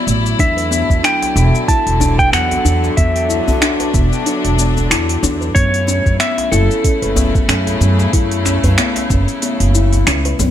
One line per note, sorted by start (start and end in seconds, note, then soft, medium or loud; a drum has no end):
0.00 0.35 F#3 medium
0.00 10.51 F#3 medium
0.00 2.93 E4 loud
0.00 0.36 D5 medium
0.07 0.32 A1 medium
0.07 0.23 A3 medium
0.07 cabasa medium
0.26 cabasa soft
0.38 0.83 E2 medium
0.38 5.51 D3 medium
0.38 5.51 F#3 medium
0.38 0.49 D4 loud
0.38 1.06 E5 medium
0.38 kick loud
0.38 open hi-hat medium
0.38 cabasa soft
0.57 0.70 B4 medium
0.57 open hi-hat soft
0.57 cabasa soft
0.71 0.89 B3 loud
0.71 djembe slap soft
0.71 djembe tone soft
0.71 cabasa medium
0.90 1.00 E2 medium
0.90 kick medium
0.90 cabasa soft
1.03 1.34 D4 loud
1.03 1.71 G5 loud
1.03 finger snap loud
1.03 open hi-hat medium
1.03 cabasa soft
1.22 open hi-hat soft
1.22 djembe slap medium
1.22 cabasa soft
1.36 1.50 E1 loud
1.36 1.53 B3 medium
1.36 cabasa medium
1.55 cabasa soft
1.68 1.78 E4 medium
1.68 2.19 A5 loud
1.68 kick loud
1.68 open hi-hat medium
1.68 cabasa soft
1.86 2.27 E1 medium
1.86 open hi-hat soft
1.86 cabasa soft
2.00 2.11 D4 loud
2.00 djembe slap medium
2.00 djembe tone medium
2.00 djembe bass loud
2.00 cabasa medium
2.18 2.32 B4 medium
2.18 2.32 G5 loud
2.18 kick loud
2.18 cabasa soft
2.32 2.58 E2 medium
2.32 2.50 B3 loud
2.32 2.97 F#5 medium
2.32 finger snap loud
2.32 open hi-hat medium
2.32 cabasa soft
2.51 open hi-hat soft
2.51 djembe tone medium
2.51 cabasa soft
2.65 2.90 E2 medium
2.65 2.96 D4 loud
2.65 cabasa medium
2.84 djembe slap soft
2.84 cabasa soft
2.97 3.41 E2 medium
2.97 3.14 B3 medium
2.97 5.53 D4 medium
2.97 4.87 E5 medium
2.97 kick loud
2.97 open hi-hat medium
2.97 cabasa soft
3.16 open hi-hat soft
3.16 cabasa soft
3.29 3.40 E4 medium
3.29 djembe slap soft
3.29 djembe tone soft
3.29 cabasa medium
3.48 3.58 E2 medium
3.48 djembe bass medium
3.48 cabasa soft
3.61 3.72 D4 loud
3.61 finger snap loud
3.61 open hi-hat medium
3.61 cabasa soft
3.80 3.93 B4 medium
3.80 open hi-hat soft
3.80 djembe slap medium
3.80 cabasa soft
3.93 4.08 E1 loud
3.93 4.11 B3 loud
3.93 kick medium
3.93 cabasa medium
4.13 cabasa soft
4.26 4.57 D4 loud
4.26 open hi-hat medium
4.26 cabasa soft
4.45 4.85 E1 medium
4.45 open hi-hat soft
4.45 cabasa soft
4.58 4.76 B3 medium
4.58 cabasa medium
4.77 djembe tone medium
4.77 cabasa soft
4.90 5.16 E2 medium
4.90 5.01 E4 medium
4.90 finger snap medium
4.90 open hi-hat medium
4.90 cabasa soft
5.09 open hi-hat soft
5.09 cabasa soft
5.23 5.48 E2 loud
5.23 5.33 D4 loud
5.23 djembe slap medium
5.23 djembe tone medium
5.23 cabasa medium
5.41 5.54 B4 medium
5.41 cabasa soft
5.55 5.99 F#2 loud
5.55 10.51 C#3 medium
5.55 10.51 A3 medium
5.55 5.72 B3 loud
5.55 10.51 E4 medium
5.55 6.19 C#5 loud
5.55 kick loud
5.55 open hi-hat medium
5.55 cabasa soft
5.74 open hi-hat soft
5.74 cabasa soft
5.87 6.19 C#4 loud
5.87 djembe slap soft
5.87 djembe tone soft
5.87 cabasa medium
6.06 6.17 F#2 medium
6.06 kick medium
6.06 cabasa soft
6.20 6.37 B3 medium
6.20 6.53 E5 loud
6.20 finger snap loud
6.20 open hi-hat medium
6.20 cabasa soft
6.38 open hi-hat medium
6.38 djembe slap medium
6.38 cabasa soft
6.51 6.66 F#1 loud
6.51 6.62 E4 medium
6.51 10.03 A4 medium
6.51 cabasa medium
6.71 cabasa soft
6.84 6.95 C#4 loud
6.84 kick loud
6.84 open hi-hat medium
6.84 cabasa soft
7.02 7.43 F#1 medium
7.02 7.16 B4 medium
7.02 open hi-hat soft
7.02 cabasa soft
7.16 7.34 B3 loud
7.16 djembe slap medium
7.16 djembe tone medium
7.16 djembe bass medium
7.16 cabasa medium
7.35 kick medium
7.35 cabasa soft
7.48 7.74 F#2 medium
7.48 7.80 C#4 loud
7.48 finger snap medium
7.48 open hi-hat medium
7.48 cabasa soft
7.67 open hi-hat soft
7.67 djembe tone medium
7.67 cabasa soft
7.81 8.06 F#2 loud
7.81 7.98 B3 medium
7.81 cabasa medium
7.99 djembe slap medium
7.99 cabasa soft
8.13 8.57 F#2 medium
8.13 8.24 E4 medium
8.13 kick loud
8.13 open hi-hat medium
8.13 cabasa soft
8.31 open hi-hat medium
8.31 cabasa soft
8.45 8.56 C#4 loud
8.45 finger snap soft
8.45 djembe slap soft
8.45 djembe tone soft
8.45 cabasa medium
8.63 8.74 F#2 medium
8.63 8.77 B4 medium
8.63 open hi-hat soft
8.63 djembe bass medium
8.63 cabasa soft
8.78 8.95 B3 loud
8.78 finger snap loud
8.78 open hi-hat medium
8.78 cabasa soft
8.96 open hi-hat medium
8.96 djembe slap medium
8.96 cabasa soft
9.10 9.24 F#1 loud
9.10 9.41 C#4 loud
9.10 kick medium
9.10 cabasa medium
9.28 open hi-hat soft
9.28 cabasa soft
9.42 9.60 B3 medium
9.42 open hi-hat medium
9.42 cabasa soft
9.60 10.01 F#1 medium
9.60 open hi-hat soft
9.60 cabasa soft
9.75 9.85 E4 medium
9.75 cabasa medium
9.93 open hi-hat soft
9.93 djembe tone medium
9.93 cabasa soft
10.07 10.32 C#2 loud
10.07 10.18 C#4 loud
10.07 finger snap loud
10.07 open hi-hat medium
10.07 cabasa soft
10.25 10.39 B4 medium
10.25 open hi-hat soft
10.25 cabasa soft
10.39 10.51 F#2 medium
10.39 10.51 B3 loud
10.39 djembe slap medium
10.39 djembe tone medium
10.39 djembe bass medium
10.39 cabasa medium